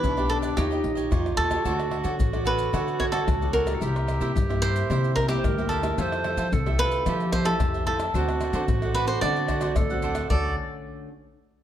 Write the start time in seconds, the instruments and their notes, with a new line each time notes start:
Already playing: nylon-string guitar B3 D4 G4, cavaquinho B4
0.02 upright bass B1, nylon-string guitar B2, recorder D4, cavaquinho E4 G4 B4 D5, pandeiro, maracas, surdo
0.17 nylon-string guitar B3 D4 G4, cavaquinho G4 B4 D5, pandeiro, tamborim, maracas
0.30 cavaquinho A4, pandeiro, maracas, surdo
0.42 cavaquinho G4 B4 D5, pandeiro, tamborim, maracas
0.57 upright bass D#2, nylon-string guitar D#3 C#4 F4 G4, recorder D#4, cavaquinho D#4 G4 C#5 D#5, pandeiro, tamborim, maracas, surdo
0.71 cavaquinho G4 C#5 D#5, pandeiro, maracas
0.83 upright bass A#1, muted cavaquinho stroke, pandeiro
0.95 cavaquinho G4 C#5 D#5, pandeiro, maracas, surdo
1.11 upright bass F2, nylon-string guitar A#2 C#4 F4 G4, cavaquinho D#4 G4 C#5 D#5, recorder F4, pandeiro, tamborim, maracas, surdo
1.26 pandeiro, tamborim, maracas
1.37 upright bass D#2, cavaquinho D#4 G4 A4 C#5 D#5, pandeiro, surdo
1.50 nylon-string guitar C#4 F#4 A4, cavaquinho G4 C#5 D#5, pandeiro, tamborim, maracas, surdo
1.65 upright bass D2, nylon-string guitar D3, cavaquinho F#4 A4 C#5 D5, recorder F#4, pandeiro, maracas, surdo
1.79 cavaquinho A4 C#5 D5, pandeiro, tamborim, maracas
1.91 cavaquinho F#4 A4 C#5 D5, pandeiro, tamborim
2.04 upright bass D3, nylon-string guitar C#4 F#4 A4, cavaquinho F#4 A4 C#5 D5, pandeiro, maracas
2.19 upright bass A1, nylon-string guitar A2, pandeiro, maracas, surdo
2.33 nylon-string guitar C#4 F#4 A4, cavaquinho A4 C#5 D5, pandeiro, tamborim, maracas
2.45 cavaquinho F#4 A4 B4 C#5 D5, pandeiro
2.58 pandeiro, maracas
2.73 upright bass D3, nylon-string guitar D3 C#4 F#4 A4, cavaquinho F#4 A4 C#5 D5, pandeiro, tamborim, maracas, surdo
2.88 pandeiro, maracas
2.99 cavaquinho F#4 A4 C#5 D5, pandeiro, tamborim, surdo
3.12 nylon-string guitar C#4 F#4 A4, cavaquinho F#4 A4 C#5 D5, pandeiro, tamborim, maracas
3.27 upright bass C#2, nylon-string guitar A2, pandeiro, tamborim, maracas, surdo
3.41 nylon-string guitar C#4 F#4 A4, cavaquinho A4 C#5 D5, pandeiro, maracas
3.53 cavaquinho F#4 A4 A#4 C#5 D5, pandeiro
3.66 nylon-string guitar A#3 E4 G4, cavaquinho A4 C#5 D5, pandeiro, tamborim, maracas
3.74 recorder A4
3.81 upright bass C2, nylon-string guitar C3, cavaquinho E4 A#4 C5 E5, recorder G4, pandeiro, maracas, surdo
3.95 cavaquinho A#4 C5 E5, pandeiro, tamborim, maracas
4.08 cavaquinho E4 A#4 C5 E5, pandeiro, tamborim, maracas
4.20 upright bass C3, nylon-string guitar A#3 E4 G4, cavaquinho E4 A#4 C5 E5, pandeiro, maracas
4.36 upright bass G2, nylon-string guitar G2, pandeiro, maracas, surdo
4.49 nylon-string guitar A#3 E4 G4, cavaquinho A#4 C5 E5, pandeiro, tamborim, maracas
4.62 cavaquinho E4 A#4 C5 E5, pandeiro, maracas
4.76 pandeiro, maracas
4.90 nylon-string guitar C3 A#3 E4 G4, upright bass C3, cavaquinho E4 A#4 C5 E5, pandeiro, tamborim, maracas, surdo
5.04 pandeiro, maracas
5.16 cavaquinho E4 A#4 C5 E5, pandeiro, tamborim, maracas, surdo
5.28 nylon-string guitar A#3 E4 G4, cavaquinho E4 G4 A#4 C5 E5, pandeiro, tamborim, maracas
5.37 recorder C5
5.44 upright bass D2, nylon-string guitar G2, recorder A#4, pandeiro, tamborim, maracas, surdo
5.58 nylon-string guitar A#3 E4 G4, cavaquinho A#4 C5 E5, pandeiro, maracas
5.69 cavaquinho E4 A4 A#4 C5 E5, pandeiro, maracas
5.83 nylon-string guitar A3 E4 G4, cavaquinho A#4 C5 E5, pandeiro, tamborim, maracas
5.97 upright bass F2, nylon-string guitar F3, cavaquinho F4 A4 C5 E5, recorder C#5, pandeiro, maracas, surdo
6.02 recorder C5
6.12 cavaquinho A4 C5 E5, pandeiro, tamborim, maracas
6.24 nylon-string guitar A3 E4 G4, cavaquinho F4 A4 C5 E5, pandeiro, tamborim
6.37 upright bass F3, cavaquinho F4 A4 C5 E5, pandeiro, maracas
6.52 upright bass C2, nylon-string guitar C3, recorder A4, pandeiro, maracas, surdo
6.66 nylon-string guitar A3 E4 G4, cavaquinho A4 C5 E5, pandeiro, tamborim, maracas
6.78 cavaquinho F4 A4 B4 C5 E5, pandeiro, maracas
6.91 pandeiro, maracas
7.06 nylon-string guitar F3 A3 E4 G4, upright bass F3, cavaquinho F4 A4 C5 E5, recorder G4, pandeiro, tamborim, maracas, surdo
7.20 pandeiro, maracas
7.32 cavaquinho F4 A4 C5 E5, pandeiro, tamborim, surdo
7.45 nylon-string guitar A3 E4 G4, cavaquinho F4 A4 C5 E5, pandeiro, tamborim, maracas
7.60 upright bass F2, nylon-string guitar C3, pandeiro, tamborim, maracas, surdo
7.74 cavaquinho A4 C5 E5, pandeiro, maracas
7.86 nylon-string guitar A3 E4 G4, cavaquinho F4 A4 C5 E5, pandeiro
8.00 cavaquinho A4 C5 E5, pandeiro, tamborim, maracas
8.13 upright bass D2, nylon-string guitar D3 A3 C4 F#4, cavaquinho D4 C5 D5 F#5, recorder F#4, pandeiro, maracas, surdo
8.29 cavaquinho C5 D5 F#5, pandeiro, tamborim, maracas
8.41 cavaquinho D4 C5 D5 F#5, pandeiro, tamborim, maracas
8.53 upright bass D3, nylon-string guitar A3 C4 F#4, cavaquinho D4 C5 D5 F#5, pandeiro, maracas
8.68 upright bass A1, nylon-string guitar A2, pandeiro, maracas, surdo
8.82 nylon-string guitar A3 C4 F#4, cavaquinho C5 D5 F#5, pandeiro, tamborim, maracas
8.94 cavaquinho D4 B4 C5 D5 F#5, pandeiro
9.07 cavaquinho C5, pandeiro, maracas
9.21 upright bass D3, nylon-string guitar D3 A3 C4 F#4, cavaquinho D4 C5 D5 F#5, pandeiro, tamborim, maracas, surdo
9.36 pandeiro, maracas
9.48 cavaquinho D4 C5 D5 F#5, pandeiro, tamborim, maracas, surdo
9.61 nylon-string guitar A3 C4 F#4, cavaquinho D4 C5 D5 F#5, pandeiro, tamborim, maracas
9.76 upright bass D2, nylon-string guitar A2, recorder A4, pandeiro, tamborim, maracas, surdo
9.90 nylon-string guitar A3 C4 F#4, cavaquinho C5 D5 F#5, pandeiro, maracas
10.02 cavaquinho D4 C5 D5 F#5, pandeiro, maracas
10.15 cavaquinho C5 D5 F#5, pandeiro, tamborim, maracas
10.29 upright bass D2, nylon-string guitar D3 A3 C#4 F#4, cavaquinho F#4 A4 C#5 D5, recorder A4, surdo